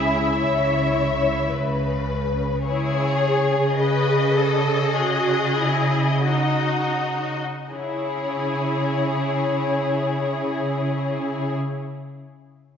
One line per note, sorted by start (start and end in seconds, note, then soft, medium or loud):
0.00 0.27 C#2 soft
0.00 0.26 C#3 soft
0.00 1.45 E4 medium
0.00 0.35 G#4 soft
0.00 1.46 E5 soft
0.39 1.36 C#2 soft
0.39 1.36 C#3 soft
0.39 1.50 C#5 soft
1.50 2.49 C#2 soft
1.50 2.49 C#3 soft
1.50 2.63 B4 soft
2.64 7.37 C#3 soft
2.64 3.17 E4 soft
2.64 3.74 G#4 soft
2.64 3.74 C#5 medium
3.22 4.93 G#4 soft
3.78 4.34 B4 soft
3.78 6.21 D#5 medium
4.38 4.94 A4 soft
4.94 5.55 F#4 medium
4.94 6.25 G#4 soft
5.57 6.25 E4 soft
6.26 7.42 D#4 soft
6.26 7.39 F#4 soft
6.26 7.39 D#5 soft
7.69 11.51 C#3 soft
7.69 11.53 E4 soft
7.69 11.53 G#4 soft
7.69 11.52 C#5 soft